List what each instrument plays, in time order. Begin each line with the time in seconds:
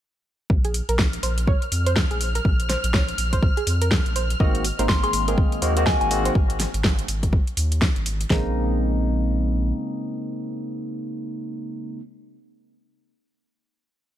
0.50 analog synth bass A#1, string machine F6, kick
0.65 synth arpeggio sound G#4, closed hi-hat
0.74 open hi-hat
0.89 analog synth bass A#1, synth arpeggio sound A#4, closed hi-hat
0.99 kick, snare
1.13 closed hi-hat
1.23 analog synth bass A#1, synth arpeggio sound C5, open hi-hat
1.38 closed hi-hat
1.47 synth arpeggio sound C#5, kick
1.62 closed hi-hat
1.72 analog synth bass F2, open hi-hat
1.86 synth arpeggio sound C5, closed hi-hat
1.96 kick, snare
2.11 analog synth bass A#1, synth arpeggio sound G#4, closed hi-hat
2.21 open hi-hat
2.35 synth arpeggio sound A#4, closed hi-hat
2.45 analog synth bass A#1, kick
2.60 closed hi-hat
2.69 synth arpeggio sound C5, snare, open hi-hat
2.84 analog synth bass A#1, closed hi-hat
2.94 synth arpeggio sound C#5, kick, snare
3.08 closed hi-hat
3.18 analog synth bass A#1, open hi-hat
3.33 synth arpeggio sound C5, kick, closed hi-hat
3.43 kick
3.57 synth arpeggio sound G#4, closed hi-hat
3.67 analog synth bass F2, open hi-hat
3.82 synth arpeggio sound A#4, closed hi-hat
3.91 kick, snare
4.06 analog synth bass A#1, closed hi-hat
4.16 synth arpeggio sound C5, open hi-hat
4.30 closed hi-hat
4.40 analog synth bass G#1, tine electric piano D#3 G#3 A#3 C4 F#4, synth arpeggio sound D#5, kick
4.55 closed hi-hat
4.65 open hi-hat
4.79 analog synth bass G#1, tine electric piano D#3 G#3 A#3 C4 A#4, synth arpeggio sound C5, closed hi-hat
4.89 synth bell C6, kick, snare
5.04 synth arpeggio sound G#4, synth bell C6, closed hi-hat
5.13 analog synth bass G#1, open hi-hat
5.28 tine electric piano D#3 G#3 A#3 C4 G#4, synth arpeggio sound A#4, closed hi-hat
5.38 kick
5.52 closed hi-hat
5.62 analog synth bass D#2, tine electric piano D#3 G#3 A#3 C4 F#4, synth arpeggio sound C5, open hi-hat
5.77 tine electric piano D#3 G#3 A#3 C4 F#4, closed hi-hat
5.86 synth arpeggio sound D#5, synth bell G#5, kick, snare
6.01 analog synth bass G#1, synth bell G#5, closed hi-hat
6.11 tine electric piano D#3 G#3 A#3 C4 F#4, open hi-hat
6.25 synth arpeggio sound C5, closed hi-hat
6.35 analog synth bass G#1, kick
6.50 closed hi-hat
6.60 snare, open hi-hat
6.74 analog synth bass G#1, closed hi-hat
6.84 kick, snare
6.99 closed hi-hat
7.08 analog synth bass G#1, open hi-hat
7.23 kick, closed hi-hat
7.33 kick
7.47 closed hi-hat
7.57 analog synth bass D#2, open hi-hat
7.72 closed hi-hat
7.82 kick, snare
7.96 analog synth bass G#1, closed hi-hat
8.06 open hi-hat
8.21 closed hi-hat
8.30 analog synth bass A#1, tine electric piano C#3 G#3 A#3 C4 D#4, synth arpeggio sound G#4, kick, snare